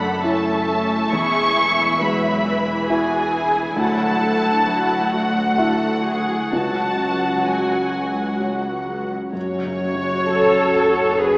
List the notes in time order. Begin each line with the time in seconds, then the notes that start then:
Already playing: F#1 F#2 C#3 D3 A3 E4 F#4 A4 C#5 E5 F#5 B5
0.02 A4
0.24 A3 C#4 E4 C#5 E5 A5
0.46 A4
0.68 A3 E4
0.91 A3
1.12 E1 E2 E3 G#3 E4 G#4 E5 C#6
1.35 G#3
1.56 E4
1.78 E5
2.00 F#3 G#3 E4 G#4 B4 B5
2.21 E5
2.44 E3 E6
2.66 E5
2.88 E4 F#4 G#4 E5 G#5 E6
3.10 E5
3.32 E4
3.54 G#3
3.76 D2 D3 F#3 A4 F#5 A5
3.98 D4
4.20 F#3 A3
4.42 E4
4.66 F#3 A3 E4 F#4 E5
4.88 F#4
5.11 F#4 E5 F#5
5.34 F#4
5.58 E4 A4 E5
5.81 F#4
6.05 E4 G#4
6.28 F#3
6.52 C#2 C#3 F#3 F#4 F#5 A5
6.75 C#4
7.00 F#3
7.23 F#4
7.46 F#3 C#5 G#5
7.69 F#4
7.93 F#5
8.16 F#4
8.40 F#4 C#5 F#5
8.63 F#4
8.86 F#3
9.10 C#4
9.33 F#1 F#2 F#3 C#4 F#4 C#5
9.57 C#3
9.64 C#3
9.81 F#3
9.95 F#3
10.03 F#4
10.27 F#4 A4
10.49 F#4
10.58 C#5
10.72 F#5
10.89 F#4
10.95 F#4
11.19 G#4 B4 C#5 F#5